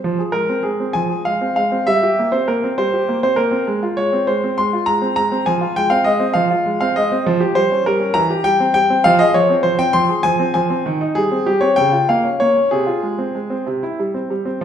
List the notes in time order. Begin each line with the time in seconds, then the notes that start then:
0.04 F3
0.19 G#4
0.32 G#3 A#4
0.49 C4
0.63 G#3 G#4
0.80 C4
0.93 F3 G#5
1.10 G#4
1.25 G#3 F5
1.41 C4
1.56 G#3 F5
1.72 C4
1.87 G3 E5
2.03 G4
2.19 A#3
2.32 C4 C5
2.48 A#3 A#4
2.64 C4
2.78 G3 C5
2.94 G4
3.09 A#3
3.23 C4 C5
3.36 A#3 A#4
3.51 C4
3.67 G#3
3.83 F4
3.97 G#3 C#5
4.13 C4
4.27 G#3 C5
4.44 C4
4.58 G#3 C6
4.73 F4
4.86 G#3 A#5
5.02 C4
5.16 G#3 A#5
5.32 C4
5.46 F3 G#5
5.61 F4
5.76 G#3 G5
5.90 C4 F5
6.04 G#3 D#5
6.20 C4
6.34 F3 F5
6.51 F4
6.65 G#3
6.81 C4 F5
6.96 G#3 D#5
7.12 C4
7.26 F3
7.40 G4
7.55 G3 C5
7.71 C#4
7.86 G3 A#4
8.00 C#4
8.14 E3 A#5
8.30 G4
8.44 G3 G5
8.60 C4
8.74 G3 G5
8.90 C4
9.04 F3 F5
9.19 G#4 D#5
9.34 F3 C#5
9.50 C4
9.63 F3 C5
9.79 C4 G5
9.93 F3 C6
10.09 G#4
10.23 F3 G#5
10.39 C4
10.54 F3 G#5
10.70 C4
10.86 D#3
11.01 D#4
11.15 G3 G#4
11.32 C4
11.46 G3 G4
11.61 C4 C#5
11.76 C#3 G5
11.92 F4
12.09 A#3 F5
12.24 C#4
12.40 A#3 C#5
12.57 C#4
12.71 C3 G#4
12.87 F4
13.03 G#3
13.18 C4
13.35 G#3
13.50 C4
13.67 C3
13.83 E4
13.99 G3
14.14 C4
14.30 G3
14.45 C4
14.61 F3